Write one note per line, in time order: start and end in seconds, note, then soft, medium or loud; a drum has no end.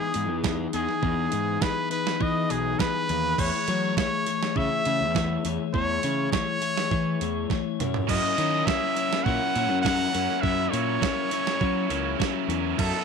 0.00 0.13 E3 loud
0.00 0.13 B3 loud
0.00 0.13 D#4 loud
0.00 0.14 G#4 loud
0.00 0.41 G#4 medium
0.13 0.30 G#2 medium
0.13 0.44 E3 medium
0.13 0.44 B3 medium
0.13 0.44 D#4 medium
0.13 0.45 G#4 loud
0.13 open hi-hat medium
0.30 0.65 E2 medium
0.44 0.73 E3 medium
0.44 0.72 B3 loud
0.44 0.73 D#4 loud
0.44 0.74 G#4 medium
0.44 kick loud
0.44 snare loud
0.73 0.86 E2 medium
0.73 1.01 E3 loud
0.73 1.01 B3 loud
0.73 1.02 D#4 medium
0.73 1.64 G#4 medium
0.73 1.02 G#4 loud
0.73 open hi-hat medium
0.89 snare soft
1.02 1.27 E2 loud
1.02 1.30 E3 loud
1.02 1.30 B3 loud
1.02 1.30 D#4 loud
1.02 1.32 G#4 loud
1.02 kick loud
1.31 1.57 G#2 medium
1.31 1.61 E3 medium
1.31 1.60 B3 medium
1.31 1.61 D#4 medium
1.31 1.62 G#4 loud
1.31 open hi-hat medium
1.61 1.89 E3 loud
1.61 1.89 B3 loud
1.61 1.89 D#4 loud
1.61 1.91 G#4 loud
1.61 1.90 B4 medium
1.61 kick loud
1.61 snare loud
1.90 2.19 E3 medium
1.90 2.19 B3 medium
1.90 2.19 D#4 medium
1.90 2.21 G#4 medium
1.90 2.24 B4 loud
1.90 open hi-hat medium
2.07 snare medium
2.19 2.49 E3 loud
2.19 2.45 E3 medium
2.19 2.49 B3 loud
2.19 2.49 D#4 loud
2.19 2.50 G#4 loud
2.19 2.53 D#5 loud
2.19 kick loud
2.49 2.74 B1 loud
2.49 2.79 E3 medium
2.49 2.78 B3 loud
2.49 2.78 D#4 medium
2.49 2.79 G#4 medium
2.49 2.81 G#4 medium
2.49 open hi-hat medium
2.79 3.08 E3 loud
2.79 3.07 B3 loud
2.79 3.08 D#4 loud
2.79 3.09 G#4 medium
2.79 3.41 B4 loud
2.79 kick loud
2.79 snare loud
3.08 3.33 D#2 loud
3.08 3.37 E3 loud
3.08 3.37 B3 medium
3.08 3.37 D#4 medium
3.08 3.38 G#4 medium
3.08 open hi-hat medium
3.38 3.50 E2 loud
3.38 3.67 E3 loud
3.38 3.67 A3 medium
3.38 3.68 E4 loud
3.38 3.68 G#4 loud
3.38 3.69 C#5 loud
3.38 3.97 C#5 loud
3.38 kick loud
3.38 crash loud
3.68 3.97 E3 medium
3.68 3.92 F#3 medium
3.68 3.97 A3 loud
3.68 3.98 E4 medium
3.68 3.98 G#4 medium
3.68 3.98 C#5 loud
3.68 open hi-hat medium
3.97 4.26 E3 loud
3.97 4.26 A3 loud
3.97 4.27 E4 loud
3.97 4.27 G#4 loud
3.97 4.59 C#5 loud
3.97 4.27 C#5 loud
3.97 kick loud
3.97 snare loud
4.27 4.56 E3 loud
4.27 4.55 A3 medium
4.27 4.57 E4 medium
4.27 4.56 G#4 medium
4.27 4.57 C#5 medium
4.27 open hi-hat medium
4.43 snare medium
4.56 4.68 C#3 loud
4.56 4.86 E3 loud
4.56 4.85 A3 loud
4.56 4.87 E4 loud
4.56 4.86 G#4 loud
4.56 4.87 C#5 loud
4.56 5.47 E5 loud
4.56 kick loud
4.85 5.02 C#3 medium
4.85 5.15 E3 medium
4.85 5.15 A3 medium
4.85 5.16 E4 loud
4.85 5.15 G#4 loud
4.85 5.16 C#5 medium
4.85 open hi-hat medium
5.01 5.36 E2 medium
5.15 5.44 E3 loud
5.15 5.44 A3 loud
5.15 5.45 E4 loud
5.15 5.44 G#4 loud
5.15 5.46 C#5 loud
5.15 kick loud
5.15 snare medium
5.45 5.57 E2 medium
5.45 5.73 E3 medium
5.45 5.73 A3 medium
5.45 5.74 E4 medium
5.45 5.73 G#4 medium
5.45 5.74 C#5 loud
5.45 open hi-hat medium
5.73 5.98 E2 loud
5.73 6.03 E3 medium
5.73 6.02 A3 loud
5.73 6.04 E4 medium
5.73 6.03 G#4 medium
5.73 6.29 C#5 loud
5.73 6.04 C#5 loud
5.73 kick loud
6.03 6.27 C#3 medium
6.03 6.32 E3 medium
6.03 6.31 A3 medium
6.03 6.33 E4 medium
6.03 6.32 G#4 loud
6.03 6.34 C#5 loud
6.03 open hi-hat medium
6.32 6.60 E3 loud
6.32 6.60 A3 loud
6.32 6.61 E4 loud
6.32 6.61 G#4 loud
6.32 7.46 C#5 loud
6.32 6.62 C#5 loud
6.32 kick loud
6.32 snare loud
6.61 6.90 E3 medium
6.61 6.90 A3 medium
6.61 6.91 E4 medium
6.61 6.91 G#4 loud
6.61 6.92 C#5 medium
6.61 open hi-hat medium
6.78 snare medium
6.91 7.21 E3 loud
6.91 7.15 E3 loud
6.91 7.20 A3 loud
6.91 7.22 E4 loud
6.91 7.21 G#4 loud
6.91 7.22 C#5 loud
6.91 kick loud
7.21 7.45 E2 medium
7.21 7.50 E3 medium
7.21 7.50 A3 medium
7.21 7.51 E4 medium
7.21 7.51 G#4 medium
7.21 7.52 C#5 medium
7.21 open hi-hat medium
7.50 7.80 E3 loud
7.50 7.78 A3 loud
7.50 7.81 E4 medium
7.50 7.79 G#4 loud
7.50 7.81 C#5 loud
7.50 kick loud
7.50 snare medium
7.80 8.04 F#2 loud
7.80 8.09 F#3 medium
7.80 8.09 C#4 loud
7.80 8.10 E4 medium
7.80 8.10 A#4 loud
7.80 8.10 C#5 loud
7.80 mid tom loud
7.80 open hi-hat medium
7.94 floor tom loud
8.08 8.21 F#2 loud
8.08 8.38 F#3 medium
8.08 8.36 A#3 medium
8.08 8.38 C#4 loud
8.08 8.38 E4 loud
8.08 8.39 A#4 loud
8.08 8.39 C#5 medium
8.08 8.68 D#5 loud
8.08 kick loud
8.08 crash loud
8.37 8.62 D#3 medium
8.37 8.68 F#3 medium
8.37 8.66 A#3 loud
8.37 8.68 C#4 medium
8.37 8.68 E4 medium
8.37 8.69 A#4 loud
8.37 8.69 C#5 loud
8.37 open hi-hat medium
8.66 8.96 F#3 loud
8.66 8.96 A#3 loud
8.66 8.96 C#4 loud
8.66 8.97 E4 loud
8.66 8.97 A#4 loud
8.66 8.97 C#5 loud
8.66 9.25 E5 loud
8.66 kick loud
8.66 snare loud
8.96 9.26 F#3 medium
8.96 9.24 A#3 loud
8.96 9.26 C#4 medium
8.96 9.26 E4 loud
8.96 9.26 A#4 loud
8.96 9.26 C#5 medium
8.96 open hi-hat medium
9.13 snare medium
9.24 9.38 A#2 loud
9.24 9.55 F#3 loud
9.24 9.53 A#3 loud
9.24 9.55 C#4 loud
9.24 9.56 E4 loud
9.24 9.55 A#4 loud
9.24 9.56 C#5 loud
9.24 9.81 F#5 loud
9.24 kick loud
9.55 9.71 A#2 loud
9.55 9.84 F#3 medium
9.55 9.83 A#3 medium
9.55 9.83 C#4 loud
9.55 9.85 E4 loud
9.55 9.84 A#4 loud
9.55 9.84 C#5 loud
9.55 open hi-hat medium
9.71 10.06 F#2 loud
9.82 10.12 F#3 medium
9.82 10.12 A#3 medium
9.82 10.12 C#4 loud
9.82 10.13 E4 loud
9.82 10.13 A#4 loud
9.82 10.13 C#5 loud
9.82 10.43 F#5 loud
9.82 kick loud
9.86 snare loud
10.12 10.27 F#2 medium
10.12 10.42 F#3 medium
10.12 10.42 A#3 medium
10.12 10.42 C#4 medium
10.12 10.43 E4 medium
10.12 10.43 A#4 loud
10.12 10.43 C#5 loud
10.12 open hi-hat medium
10.30 snare soft
10.41 10.67 F#2 medium
10.41 10.71 F#3 loud
10.41 10.72 A#3 loud
10.41 10.70 C#4 loud
10.41 10.71 E4 medium
10.41 10.70 A#4 loud
10.41 10.71 C#5 loud
10.41 10.72 E5 loud
10.41 kick loud
10.71 10.97 A#2 loud
10.71 11.00 F#3 medium
10.71 11.01 A#3 medium
10.71 11.00 C#4 medium
10.71 11.01 E4 medium
10.71 11.00 A#4 medium
10.71 12.48 C#5 loud
10.71 11.00 C#5 loud
10.71 open hi-hat medium
11.01 11.31 F#3 loud
11.01 11.31 A#3 loud
11.01 11.30 C#4 loud
11.01 11.32 E4 loud
11.01 11.31 A#4 loud
11.01 11.31 C#5 loud
11.01 kick loud
11.01 snare loud
11.31 11.60 F#3 medium
11.31 11.60 A#3 loud
11.31 11.60 C#4 loud
11.31 11.61 E4 medium
11.31 11.60 A#4 loud
11.31 11.61 C#5 loud
11.31 open hi-hat medium
11.47 snare medium
11.61 11.89 F#3 medium
11.61 11.85 F#3 loud
11.61 11.89 A#3 loud
11.61 11.88 C#4 loud
11.61 11.90 E4 loud
11.61 11.89 A#4 loud
11.61 11.90 C#5 loud
11.61 kick loud
11.89 12.14 C#2 loud
11.89 12.18 F#3 loud
11.89 12.18 A#3 loud
11.89 12.17 C#4 medium
11.89 12.19 E4 loud
11.89 12.18 A#4 loud
11.89 12.18 C#5 loud
11.89 open hi-hat medium
12.18 12.48 F#3 loud
12.18 12.47 A#3 loud
12.18 12.48 C#4 loud
12.18 12.49 E4 medium
12.18 12.48 A#4 loud
12.18 12.48 C#5 loud
12.18 kick loud
12.18 snare loud
12.48 12.72 E2 loud
12.48 12.76 F#3 medium
12.48 12.76 A#3 medium
12.48 12.77 C#4 medium
12.48 12.77 E4 medium
12.48 12.77 A#4 medium
12.48 12.77 C#5 loud
12.48 open hi-hat medium
12.77 12.91 F#2 loud
12.77 13.04 F#3 medium
12.77 13.04 B3 loud
12.77 13.04 D#4 loud
12.77 13.04 E4 loud
12.77 13.04 A4 loud
12.77 13.04 A4 medium
12.77 13.04 E5 loud
12.77 kick loud
12.77 crash loud